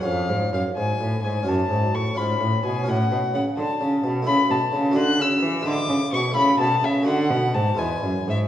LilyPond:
<<
  \new Staff \with { instrumentName = "Violin" } { \time 6/8 \key fis \minor \tempo 4. = 85 eis''4 eis''8 gis''4 gis''8 | a''4 cis'''8 b''4 gis''8 | fis''4 fis''8 a''4 r8 | \key a \major b''8 a''4 fis'''8 e'''4 |
d'''4 cis'''8 b''8 a''8 e''8 | fis''4 a''8 gis''4 e''8 | }
  \new Staff \with { instrumentName = "Harpsichord" } { \time 6/8 \key fis \minor <cis' gis' cis''>2. | <cis' fis' cis''>4. <cis' eis' cis''>4. | <cis' fis' cis''>2. | \key a \major <a e' e''>4. <a fis' d''>4. |
<gis e' e''>4. <a e' e''>4. | <a fis' d''>4. <gis e' b'>4. | }
  \new Staff \with { instrumentName = "Harpsichord" } { \clef bass \time 6/8 \key fis \minor eis,8 gis,8 fis,8 gis,8 a,8 gis,8 | fis,8 gis,8 a,8 gis,8 a,8 b,8 | a,8 b,8 cis8 d8 cis8 b,8 | \key a \major cis8 b,8 cis8 d8 cis8 e8 |
d8 cis8 b,8 cis8 b,8 cis8 | d8 b,8 gis,8 e,8 fis,8 gis,8 | }
  \new Staff \with { instrumentName = "Cello" } { \clef bass \time 6/8 \key fis \minor eis,8 gis,8 fis,8 gis,8 a,8 gis,8 | fis,8 gis,8 a,8 gis,8 a,8 b,8 | a,8 b,8 cis8 d8 cis8 b,8 | \key a \major cis8 b,8 cis8 d8 cis8 e8 |
d8 cis8 b,8 cis8 b,8 cis8 | d8 b,8 gis,8 e,8 fis,8 gis,8 | }
>>